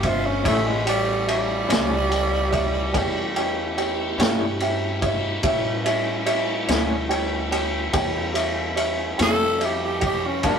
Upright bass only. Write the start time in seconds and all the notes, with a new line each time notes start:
Already playing: G1
0.45 A1
1.70 C#2
2.94 E2
4.18 G2
5.43 A2
6.69 D2
7.94 E2
9.20 F2
10.44 G2